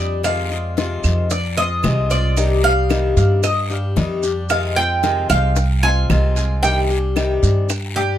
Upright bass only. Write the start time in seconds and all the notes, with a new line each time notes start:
Already playing: F2
1.04 F2
1.84 C2
3.17 G2
3.97 F2
5.30 C2
6.10 C2
7.43 G2